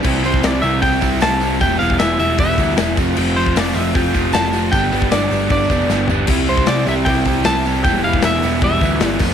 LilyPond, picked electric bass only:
\new Staff \with { instrumentName = "Picked electric bass" } { \clef bass \time 4/4 \key c \major \tempo 4 = 154 c,4 c,8 c,8 c,8 c,8 c,4 | e,,8 e,,8 e,,8 e,,8 e,,8 d,8 e,,8 f,,8 | f,,4 f,,8 f,,8 f,,8 f,,8 f,,4 | g,,8 g,,8 g,,8 g,,8 g,,8 f,,8 g,,8 g,,8 |
c,4 c,8 c,8 c,8 c,8 c,4 | e,,8 e,,8 e,,8 e,,8 e,,8 d,8 g,,8 f,,8 | }